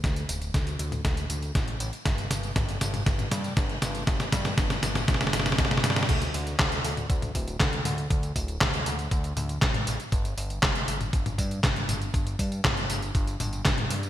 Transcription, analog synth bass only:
0, 0, Header, 1, 2, 480
1, 0, Start_track
1, 0, Tempo, 504202
1, 37, Time_signature, 4, 2, 24, 8
1, 13419, End_track
2, 0, Start_track
2, 0, Title_t, "Analog synth bass"
2, 0, Program_c, 0, 38
2, 36, Note_on_c, 0, 38, 89
2, 244, Note_off_c, 0, 38, 0
2, 276, Note_on_c, 0, 26, 79
2, 484, Note_off_c, 0, 26, 0
2, 516, Note_on_c, 0, 38, 92
2, 724, Note_off_c, 0, 38, 0
2, 754, Note_on_c, 0, 38, 101
2, 963, Note_off_c, 0, 38, 0
2, 997, Note_on_c, 0, 38, 102
2, 1204, Note_off_c, 0, 38, 0
2, 1236, Note_on_c, 0, 38, 103
2, 1444, Note_off_c, 0, 38, 0
2, 1477, Note_on_c, 0, 33, 82
2, 1684, Note_off_c, 0, 33, 0
2, 1715, Note_on_c, 0, 33, 95
2, 1819, Note_off_c, 0, 33, 0
2, 1956, Note_on_c, 0, 31, 101
2, 2164, Note_off_c, 0, 31, 0
2, 2195, Note_on_c, 0, 31, 84
2, 2404, Note_off_c, 0, 31, 0
2, 2436, Note_on_c, 0, 31, 101
2, 2644, Note_off_c, 0, 31, 0
2, 2676, Note_on_c, 0, 31, 104
2, 2884, Note_off_c, 0, 31, 0
2, 2916, Note_on_c, 0, 31, 89
2, 3124, Note_off_c, 0, 31, 0
2, 3156, Note_on_c, 0, 43, 101
2, 3364, Note_off_c, 0, 43, 0
2, 3396, Note_on_c, 0, 31, 89
2, 3604, Note_off_c, 0, 31, 0
2, 3636, Note_on_c, 0, 31, 104
2, 3844, Note_off_c, 0, 31, 0
2, 3875, Note_on_c, 0, 31, 84
2, 4084, Note_off_c, 0, 31, 0
2, 4116, Note_on_c, 0, 43, 78
2, 4324, Note_off_c, 0, 43, 0
2, 4356, Note_on_c, 0, 31, 95
2, 4564, Note_off_c, 0, 31, 0
2, 4595, Note_on_c, 0, 31, 102
2, 4804, Note_off_c, 0, 31, 0
2, 4836, Note_on_c, 0, 31, 104
2, 5044, Note_off_c, 0, 31, 0
2, 5075, Note_on_c, 0, 31, 105
2, 5284, Note_off_c, 0, 31, 0
2, 5316, Note_on_c, 0, 31, 90
2, 5524, Note_off_c, 0, 31, 0
2, 5555, Note_on_c, 0, 43, 111
2, 5763, Note_off_c, 0, 43, 0
2, 5796, Note_on_c, 0, 38, 102
2, 6004, Note_off_c, 0, 38, 0
2, 6035, Note_on_c, 0, 38, 87
2, 6244, Note_off_c, 0, 38, 0
2, 6276, Note_on_c, 0, 38, 98
2, 6484, Note_off_c, 0, 38, 0
2, 6515, Note_on_c, 0, 38, 99
2, 6723, Note_off_c, 0, 38, 0
2, 6756, Note_on_c, 0, 38, 90
2, 6964, Note_off_c, 0, 38, 0
2, 6996, Note_on_c, 0, 26, 96
2, 7204, Note_off_c, 0, 26, 0
2, 7236, Note_on_c, 0, 38, 90
2, 7444, Note_off_c, 0, 38, 0
2, 7476, Note_on_c, 0, 38, 104
2, 7684, Note_off_c, 0, 38, 0
2, 7716, Note_on_c, 0, 38, 91
2, 7924, Note_off_c, 0, 38, 0
2, 7956, Note_on_c, 0, 26, 81
2, 8164, Note_off_c, 0, 26, 0
2, 8196, Note_on_c, 0, 38, 97
2, 8404, Note_off_c, 0, 38, 0
2, 8436, Note_on_c, 0, 38, 105
2, 8644, Note_off_c, 0, 38, 0
2, 8677, Note_on_c, 0, 38, 103
2, 8885, Note_off_c, 0, 38, 0
2, 8915, Note_on_c, 0, 38, 102
2, 9124, Note_off_c, 0, 38, 0
2, 9156, Note_on_c, 0, 33, 82
2, 9364, Note_off_c, 0, 33, 0
2, 9396, Note_on_c, 0, 33, 96
2, 9500, Note_off_c, 0, 33, 0
2, 9637, Note_on_c, 0, 31, 101
2, 9844, Note_off_c, 0, 31, 0
2, 9876, Note_on_c, 0, 31, 85
2, 10084, Note_off_c, 0, 31, 0
2, 10116, Note_on_c, 0, 31, 104
2, 10324, Note_off_c, 0, 31, 0
2, 10357, Note_on_c, 0, 31, 98
2, 10564, Note_off_c, 0, 31, 0
2, 10597, Note_on_c, 0, 31, 88
2, 10805, Note_off_c, 0, 31, 0
2, 10837, Note_on_c, 0, 43, 100
2, 11044, Note_off_c, 0, 43, 0
2, 11077, Note_on_c, 0, 31, 87
2, 11284, Note_off_c, 0, 31, 0
2, 11317, Note_on_c, 0, 31, 109
2, 11525, Note_off_c, 0, 31, 0
2, 11556, Note_on_c, 0, 31, 89
2, 11764, Note_off_c, 0, 31, 0
2, 11796, Note_on_c, 0, 43, 81
2, 12004, Note_off_c, 0, 43, 0
2, 12037, Note_on_c, 0, 31, 96
2, 12244, Note_off_c, 0, 31, 0
2, 12278, Note_on_c, 0, 31, 102
2, 12485, Note_off_c, 0, 31, 0
2, 12516, Note_on_c, 0, 31, 106
2, 12724, Note_off_c, 0, 31, 0
2, 12758, Note_on_c, 0, 31, 103
2, 12965, Note_off_c, 0, 31, 0
2, 12997, Note_on_c, 0, 31, 88
2, 13204, Note_off_c, 0, 31, 0
2, 13237, Note_on_c, 0, 43, 105
2, 13419, Note_off_c, 0, 43, 0
2, 13419, End_track
0, 0, End_of_file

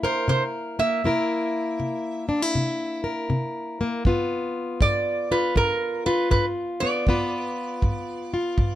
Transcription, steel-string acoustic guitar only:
0, 0, Header, 1, 2, 480
1, 0, Start_track
1, 0, Tempo, 754717
1, 656, Time_signature, 4, 2, 24, 8
1, 5566, End_track
2, 0, Start_track
2, 0, Title_t, "Steel-string acoustic guitar"
2, 0, Program_c, 0, 25
2, 0, Note_on_c, 0, 48, 71
2, 0, Note_on_c, 0, 58, 64
2, 0, Note_on_c, 0, 64, 62
2, 22, Note_on_c, 0, 70, 68
2, 147, Note_off_c, 0, 48, 0
2, 178, Note_on_c, 0, 48, 74
2, 495, Note_off_c, 0, 58, 0
2, 503, Note_on_c, 0, 58, 64
2, 624, Note_off_c, 0, 48, 0
2, 641, Note_off_c, 0, 64, 0
2, 641, Note_off_c, 0, 70, 0
2, 660, Note_off_c, 0, 58, 0
2, 663, Note_on_c, 0, 48, 70
2, 667, Note_on_c, 0, 58, 61
2, 670, Note_on_c, 0, 64, 59
2, 678, Note_on_c, 0, 70, 73
2, 1106, Note_off_c, 0, 48, 0
2, 1142, Note_on_c, 0, 48, 71
2, 1452, Note_off_c, 0, 64, 0
2, 1454, Note_on_c, 0, 62, 58
2, 1541, Note_off_c, 0, 62, 0
2, 1541, Note_on_c, 0, 64, 52
2, 1586, Note_off_c, 0, 48, 0
2, 1623, Note_on_c, 0, 48, 76
2, 1925, Note_off_c, 0, 70, 0
2, 1933, Note_on_c, 0, 70, 67
2, 2066, Note_off_c, 0, 48, 0
2, 2098, Note_on_c, 0, 48, 70
2, 2414, Note_off_c, 0, 58, 0
2, 2422, Note_on_c, 0, 58, 58
2, 2544, Note_off_c, 0, 48, 0
2, 2556, Note_off_c, 0, 70, 0
2, 2577, Note_on_c, 0, 43, 73
2, 2579, Note_off_c, 0, 64, 0
2, 2580, Note_off_c, 0, 58, 0
2, 2584, Note_on_c, 0, 59, 61
2, 2588, Note_on_c, 0, 65, 63
2, 3024, Note_off_c, 0, 43, 0
2, 3060, Note_on_c, 0, 43, 70
2, 3377, Note_off_c, 0, 65, 0
2, 3380, Note_on_c, 0, 65, 57
2, 3505, Note_off_c, 0, 43, 0
2, 3533, Note_on_c, 0, 43, 77
2, 3855, Note_off_c, 0, 65, 0
2, 3857, Note_on_c, 0, 65, 61
2, 3982, Note_off_c, 0, 43, 0
2, 4012, Note_on_c, 0, 43, 75
2, 4339, Note_off_c, 0, 59, 0
2, 4341, Note_on_c, 0, 59, 60
2, 4462, Note_off_c, 0, 43, 0
2, 4500, Note_on_c, 0, 43, 73
2, 4503, Note_off_c, 0, 59, 0
2, 4505, Note_on_c, 0, 59, 64
2, 4506, Note_off_c, 0, 65, 0
2, 4508, Note_on_c, 0, 65, 59
2, 4514, Note_on_c, 0, 71, 68
2, 4947, Note_off_c, 0, 43, 0
2, 4983, Note_on_c, 0, 43, 71
2, 5299, Note_off_c, 0, 65, 0
2, 5302, Note_on_c, 0, 65, 56
2, 5429, Note_off_c, 0, 43, 0
2, 5460, Note_on_c, 0, 43, 83
2, 5566, Note_off_c, 0, 43, 0
2, 5566, Note_off_c, 0, 59, 0
2, 5566, Note_off_c, 0, 65, 0
2, 5566, Note_off_c, 0, 71, 0
2, 5566, End_track
0, 0, End_of_file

